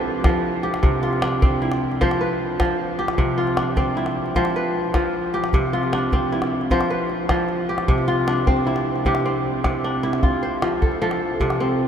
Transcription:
Already playing: kora F3 D4 F4 G4 A4 B4 C5
0.24 kora F3, calabash thump, calabash click
0.63 kora G4, calabash click
0.74 calabash click
0.83 kora C3, calabash thump
1.03 kora F4
1.13 calabash click
1.22 kora D4, calabash click
1.42 kora C4, calabash thump
1.62 kora E4
1.72 calabash click
1.92 calabash click
2.01 kora F3 C5, calabash thump
2.11 calabash click
2.21 kora B4
2.60 kora F3, calabash thump, calabash click
2.99 kora G4, calabash click
3.08 calabash click
3.18 kora C3, calabash thump
3.38 kora F4
3.47 calabash click
3.57 kora D4, calabash click
3.77 kora C4, calabash thump
3.97 kora E4
4.06 calabash click
4.26 calabash click
4.35 kora F3 C5, calabash thump
4.45 calabash click
4.56 kora B4
4.94 kora F3, calabash thump, calabash click
5.34 kora G4, calabash click
5.44 calabash click
5.53 kora C3, calabash thump
5.73 kora F4
5.83 calabash click
5.93 kora D4, calabash click
6.12 kora C4, calabash thump
6.32 kora E4
6.42 calabash click
6.61 calabash click
6.71 kora F3 C5, calabash thump
6.81 calabash click
6.90 kora B4, calabash click
7.10 calabash click
7.29 kora F3, calabash thump, calabash click
7.49 calabash click
7.69 kora G4
7.78 calabash click
7.88 kora C3, calabash thump
7.98 calabash click
8.08 kora F4, calabash click
8.27 kora D4, calabash click
8.38 calabash click
8.47 kora C4, calabash thump
8.57 calabash click
8.67 kora E4, calabash click
8.76 calabash click
8.96 calabash click
9.05 kora C3 G4, calabash thump
9.15 calabash click
9.26 kora C4
9.64 kora C3, calabash thump, calabash click
9.84 kora D4
10.03 kora E4, calabash click
10.13 calabash click
10.23 kora F4, calabash thump, calabash click
10.43 kora C5
10.62 kora F3, calabash click
10.82 kora A4, calabash thump
10.92 calabash click
11.02 kora F3 A4
11.11 calabash click
11.40 kora C3, calabash thump
11.50 calabash click
11.60 kora C4

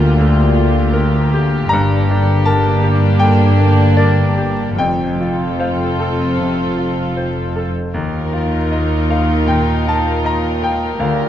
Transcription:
Already playing: grand piano D2 F4 G4 A#4 D5 F5, cello section D2, double bass section D2, harp D3 A#3 D4 F4 G4 A#4, viola section A#3, violin section F4 G4
0.16 grand piano D2, harp D3
0.41 harp D4
0.55 grand piano F4
0.66 harp F4
0.91 harp G4, grand piano A#4
1.17 harp A#4
1.33 grand piano G4
1.43 harp F4
1.69 double bass section G1, harp G2, cello section G2, grand piano G2 A#5, viola section A#3, violin section D4
1.96 harp D3
2.11 grand piano D4
2.21 harp D4
2.44 harp G4, grand piano A#4 A5
2.70 harp A#4
2.84 grand piano G4
2.95 harp D4
3.20 harp G2, grand piano D3 G5
3.45 harp D3
3.60 grand piano D4
3.71 harp D4
3.97 harp G4, grand piano A#4 D5
4.23 harp A#4
4.38 grand piano G4
4.51 harp D4
4.77 double bass section F1, harp F2, cello section F2, grand piano F2 G5, viola section C4, violin section F4 A4
5.06 harp C3
5.20 grand piano F4
5.33 harp F4
5.59 harp A4, grand piano C5 F5
5.86 harp C5
6.00 grand piano A4
6.12 harp F4
6.39 harp F2, grand piano C3
6.65 harp C3
6.78 grand piano F4
6.91 harp F4
7.17 harp A4, grand piano C5
7.43 harp C5
7.56 grand piano A4
7.69 harp F4
7.94 grand piano D#2, double bass section D#2, cello section D#2, harp D#3, viola section D#4, violin section F4 A#4
8.21 harp A#3
8.33 grand piano F4
8.46 harp F4
8.71 harp A#4, grand piano D#5
8.97 harp D#5
9.10 grand piano A#4 F5
9.22 harp F4
9.47 grand piano A#2 G5, harp D#3
9.73 harp A#3
9.86 grand piano F4 A5
9.99 harp F4
10.24 harp A#4, grand piano D#5 A#5
10.50 harp D#5
10.63 grand piano A#4 G5
10.75 harp F4
10.99 grand piano D2 F5, double bass section D2, cello section D2, harp D3, viola section F4, violin section G4

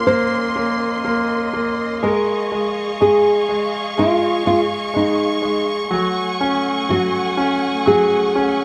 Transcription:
Already playing: grand piano A#3, string section C#4 A#4 C6
0.07 grand piano A#3, nylon-string guitar C5, string section D#5
0.56 grand piano A#3
1.05 grand piano A#3
1.53 grand piano A#3
2.02 grand piano G#3, string section G#4 F5 C#6, nylon-string guitar A#4
2.52 grand piano G#3
3.00 grand piano G#3, nylon-string guitar G#4
3.49 grand piano G#3
3.98 grand piano G#3, nylon-string guitar F4
4.45 grand piano G#3, nylon-string guitar F4
4.94 grand piano G#3, nylon-string guitar D#4
5.42 grand piano G#3
5.91 grand piano F#3, string section A3 F#5 G#5
6.41 grand piano C#4
6.89 grand piano F#3, nylon-string guitar F#4
7.37 grand piano C#4
7.86 grand piano F#3, nylon-string guitar G#4
8.35 grand piano C#4

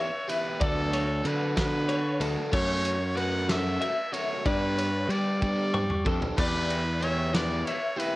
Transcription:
Already playing: clean electric guitar D3 E5, trumpet C#5
0.28 overdriven electric guitar E3 B3 E4 G4, trumpet B4, ride
0.60 picked electric bass D2, overdriven electric guitar F#3 B3 D4 F#4, trumpet A4, clean electric guitar D5, kick, ride
0.93 clean electric guitar C#5, ride
1.24 picked electric bass D3, overdriven electric guitar F#3 B3 D4 F#4, clean electric guitar B4, trumpet B4, ride
1.55 overdriven electric guitar F#3 B3 D4 F#4, trumpet B4, kick, snare, ride
1.89 clean electric guitar C#5, ride
2.21 picked electric bass D2, overdriven electric guitar F#3 B3 D4 F#4, clean electric guitar A4, ride
2.51 picked electric bass F#2, overdriven electric guitar F#3 A3 C#4 F#4, clean electric guitar C#5, trumpet C#5, kick, crash
2.85 ride
3.15 overdriven electric guitar F#3 A3 C#4 F#4, clean electric guitar B4, trumpet F#5, ride
3.48 overdriven electric guitar F#3 A3 C#4 F#4, clean electric guitar A4, trumpet E5, snare, ride
3.81 clean electric guitar E5, ride
4.12 overdriven electric guitar F#3 A3 C#4 F#4, trumpet C#5, ride
4.45 picked electric bass G2, overdriven electric guitar G3 B3 D4 G4, trumpet B4, clean electric guitar D5, kick, ride
4.78 clean electric guitar C#5, ride
5.09 picked electric bass G3, overdriven electric guitar G3 B3 D4 G4, clean electric guitar B4, trumpet D5, ride
5.41 overdriven electric guitar G3 B3 D4 G4, trumpet D5, kick
5.74 clean electric guitar C#6, mid tom
5.90 mid tom
6.05 picked electric bass F2, overdriven electric guitar G3 B3 D4 G4, clean electric guitar A4, kick
6.22 floor tom
6.37 picked electric bass E2, overdriven electric guitar E3 B3 E4 G4, trumpet B4, clean electric guitar D5, kick, splash, crash
6.70 ride
7.01 overdriven electric guitar E3 B3 E4 G4, clean electric guitar C#5, trumpet E5, ride
7.33 overdriven electric guitar E3 B3 E4 G4, clean electric guitar B4, trumpet D5, snare, ride
7.65 trumpet C#5, clean electric guitar E5, ride
7.97 overdriven electric guitar E3 B3 E4 G4, trumpet B4, ride

